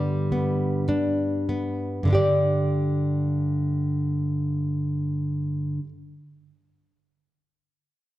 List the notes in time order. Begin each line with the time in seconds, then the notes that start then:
Already playing: G2 D3 G3 B3 G4
0.32 B3
0.89 D4
1.49 B3
2.03 G2 D3
2.08 B3 D4
2.13 G4 D5